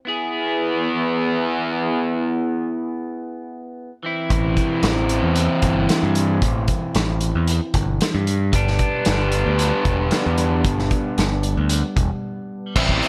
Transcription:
0.05 B3 E4 G#4
4.03 E3 C4 E4
4.30 A1, kick, closed hi-hat
4.57 kick, closed hi-hat
4.83 A1, snare, closed hi-hat
5.09 closed hi-hat
5.23 E2
5.36 closed hi-hat
5.62 G1, kick, closed hi-hat
5.89 snare, closed hi-hat
6.03 G2
6.15 closed hi-hat
6.42 A1, kick, closed hi-hat
6.68 kick, closed hi-hat
6.95 A1, snare, closed hi-hat
7.21 closed hi-hat
7.35 E2
7.48 closed hi-hat
7.74 G1, kick, closed hi-hat
8.01 snare, closed hi-hat
8.15 G2
8.27 closed hi-hat
8.52 G1 G3 B3 D4, kick, closed hi-hat
8.67 snare
8.79 kick, closed hi-hat
9.05 G1, snare, closed hi-hat
9.32 closed hi-hat
9.46 D2
9.59 closed hi-hat
9.85 E1, kick, closed hi-hat
10.11 snare, closed hi-hat
10.26 E2
10.38 closed hi-hat
10.64 G1, kick, closed hi-hat
10.79 snare
10.91 kick, closed hi-hat
11.18 G1, snare, closed hi-hat
11.43 closed hi-hat
11.57 D2
11.69 closed hi-hat
11.96 E1, kick, closed hi-hat
12.76 A1 E3 C4 E4, kick, crash
12.89 kick
13.02 open hi-hat

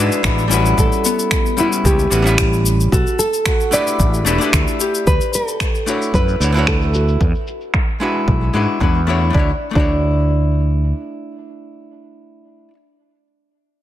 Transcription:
Already playing: G#3 D4 E4 G#4 B4
0.00 D4 F#4 B4
0.12 shaker
0.23 A1 G#3 D4 E4 F#4 B4, finger snap, kick, shaker
0.38 shaker
0.48 G3 C#4 E4 F#4, shaker
0.52 F#4 B4
0.66 shaker
0.78 A1 A4, kick, shaker
0.92 shaker
1.05 B3, shaker
1.19 shaker
1.31 finger snap, kick, shaker
1.46 shaker
1.57 G3 C#4 E4 F#4 B4, shaker
1.73 shaker
1.85 C#2 C#4 G4, kick, shaker
1.99 shaker
2.10 A1 G3 C#4 E4 F#4 B4, shaker
2.22 G3 C#4 E4
2.26 B4 F#5, shaker
2.38 finger snap, kick, shaker
2.53 shaker
2.66 shaker
2.80 shaker
2.92 B1 F#4 A4, kick, shaker
3.07 shaker
3.19 A4, shaker
3.33 shaker
3.46 F#4, finger snap, kick, shaker
3.60 shaker
3.71 A3 D4 E4 G4 B4 D5, shaker
3.87 shaker
4.00 A1, kick, shaker
4.14 shaker
4.25 E1 A3 D4 E4 G4 B4, shaker
4.38 A3 D4 E4 G4, shaker
4.44 B4
4.53 D2, finger snap, kick, shaker
4.68 shaker
4.80 G4, shaker
4.95 shaker
5.07 D2 B4, kick, shaker
5.21 shaker
5.34 A4, shaker
5.48 shaker
5.60 finger snap, kick, shaker
5.75 shaker
5.86 A3 D4 E4 F#4 C#5, shaker
6.02 shaker
6.14 F#2 B4, kick, shaker
6.28 shaker
6.40 D2 A3 D4 E4 F#4 C#5, shaker
6.52 A3 D4 E4, shaker
6.57 F#4 C#5
6.67 A4, finger snap, kick, shaker
6.82 shaker
6.94 F#4, shaker
7.08 shaker
7.21 E2, kick, shaker
7.35 shaker
7.47 shaker
7.61 shaker
7.74 finger snap, kick, shaker
7.88 shaker
8.00 G#3 D4 E4 F#4 B4, shaker
8.15 shaker
8.28 B1, kick
8.54 G#2 G#3 D4 E4 F#4 B4
8.80 E2 G#3 D4 E4 F#4 B4, finger snap, kick
9.07 A3 D4 E4 F#4 C#5
9.30 A3 D4
9.35 D2 E4 F#4, kick
9.39 C#5
9.71 A3 D4
9.75 D2 D4 E4 F#4, kick
9.80 C#5

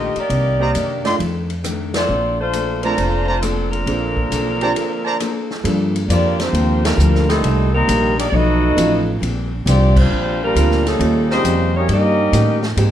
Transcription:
Already playing: A#1 D#3 A3 A#3 D4 F4 G4 D#5
0.16 A#3 D#4 D5, muted upright bass stroke, ride
0.20 G4
0.28 C2 C3 D#3 A#3 D4, ride
0.60 A#3 D#4 G4 C5 D5 D#5 A#5
0.74 F#2 C3 D#3 A#3 D4, hi-hat pedal, ride
1.05 A3 D4 D#4 F4 D5 D#5 G5 C6, snare, ride
1.18 F2 D#3 A3 D4, ride
1.50 ride
1.64 F2 D#3 A3 D4, cross-stick, hi-hat pedal, ride
1.94 C4 F4 A4 D5, snare, ride
2.08 A#1 A#3 D4 A4 C5
2.39 A3 D4 F4 C5
2.53 A#3 D4 A4 C5, hi-hat pedal, ride
2.82 F3 A3 C4 D4 F4 A#4 C5 D5 A5 A#5, ride
2.97 F1 A3 A#3 D4 F4 A4 C5, ride
3.27 C5 D5 A5 A#5
3.42 F3 A#3 C4 D4 A4 C5, cross-stick, hi-hat pedal, ride
3.70 D3 F3 A#3 C4 D4 A#4, ride
3.86 A#1 A#3 C4 D4 F4 A4 C5, ride
4.17 kick
4.30 B1 A#3 D4 A4 C5, hi-hat pedal, ride
4.61 C4 D4 F4 G4 C5 D5 A5 A#5, ride
4.75 A#3 D4 A4 C5, ride
5.05 C5 D5 A5 A#5
5.20 A#3 D4 A4 C5, cross-stick, hi-hat pedal, ride
5.50 snare
5.63 G2 F3 G3 A#3 D4 F4 A4, ride
5.67 D4
5.96 ride
6.08 F2 G2 F3 A#3 D4 F4 G4 D5, hi-hat pedal, ride
6.38 D3 F3 A#3 C4 F4 G4 C5, snare, ride
6.53 D#2 G2 F3 A#3 D4, ride
6.85 D3 F3 G3 A#3 D4 F4 A#4, snare, ride
6.97 D2 G2 F3 A#3 D4, hi-hat pedal
7.15 snare
7.28 A#2 D#3 G3 A3 C4 D#4 A4, snare, ride
7.42 C2 C3 G3 A#3, ride
7.47 D#4
7.73 D#3 G3 A#3 C4 D#4 A#4
7.87 A#1 C3 G3 A#3 D#4, hi-hat pedal, ride
8.17 A#3 D4 D#4 G4 D5, ride
8.29 B1 B2 F3 F#3 A3 D#4 A4 D5 D#5
8.33 A3 B3 D#4 F#4
8.76 A1 B2 F3 F#3 A3 B3 D#4 F4, hi-hat pedal, ride
9.19 A#1 A#2 G3 C4 D4, ride
9.65 C2 A#2 F3 G3 C4 D4 F4 G4 D5, hi-hat pedal, ride
9.96 F3 G3 C4 D4 F4 C5, kick, crash
10.10 A#1 A#2 G3 C4 D4
10.42 F3 G3 A#3 D4 F4 A#4
10.54 D2 A#2 G3 A#3 C4 D4 F4, hi-hat pedal, ride
10.71 snare
10.86 A#2 C#3 G3 A3 C#4 D#4 A4, snare, ride
10.98 D#2 D#3 G3 A#3 C#4 D#4 F4 G4, ride
11.30 C#3 G3 A#3 C4 D#4 G4 C5, snare
11.44 F2 D#3 A#3 C#4 G4, hi-hat pedal, ride
11.76 G3 A#3 C#4 D#4 G4 C#5
11.87 G2 D#3 G3 A#3 C#4 D#4 G4, ride
11.91 A#3 C#4 G4 A#4 D#5
12.32 A2 D#3 A#3 C#4 G4, hi-hat pedal, ride
12.62 snare
12.77 G#2 G3 G#3 A#3 C4 D#4 G4 A#4, ride

